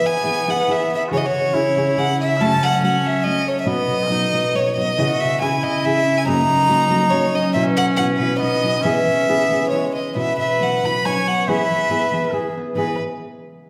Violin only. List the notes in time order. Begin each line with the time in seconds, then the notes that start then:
0.06 G#5
0.50 F#5
0.71 E5
0.95 E5
1.13 C#5
1.17 D#5
1.25 C#5
1.99 F#5
2.21 E5
2.41 A5
2.63 F#5
2.84 F#5
3.07 E5
3.23 D#5
3.48 C#5
3.60 E5
3.67 D#5
4.56 C#5
4.76 D#5
5.20 E5
5.42 G#5
5.63 D#5
5.85 E5
6.18 G#5
6.28 A#5
7.10 C#5
7.35 D#5
7.53 E5
7.77 F#5
7.97 F#5
8.18 B4
8.40 D#5
8.83 E5
9.70 C#5
9.95 D#5
10.17 E5
10.39 E5
10.63 F#5
10.85 B5
11.05 G#5
11.28 F#5
11.49 E5
12.77 B4